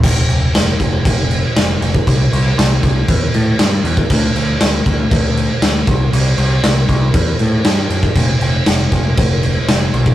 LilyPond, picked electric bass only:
\new Staff \with { instrumentName = "Picked electric bass" } { \clef bass \time 4/4 \key c \lydian \tempo 4 = 118 f,,8 f,,8 f,,8 f,,8 f,,4 f,,8 f,,8 | c,8 c,8 c,8 c,8 e,8 a,8 g,8 e,8 | d,8 d,8 d,8 d,8 d,4 d,8 c,8 | c,8 c,8 c,8 c,8 e,8 a,8 g,8 fis,8 |
f,,8 f,,8 f,,8 f,,8 f,,4 f,,8 b,,8 | }